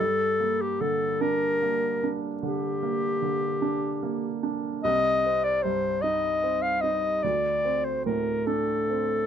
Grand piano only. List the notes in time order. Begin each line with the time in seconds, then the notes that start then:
0.00 G2
0.40 A#3
0.81 D3
1.21 D4
1.62 A#3
2.04 D4
2.43 D3
2.83 A#3
3.22 D3
3.62 D4
4.03 A#3
4.43 D4
4.84 C2
5.26 C4
5.65 G2
6.04 D#4
6.43 C4
6.84 D#4
7.24 D2
7.65 C4
8.06 A2
8.47 D4
8.90 C4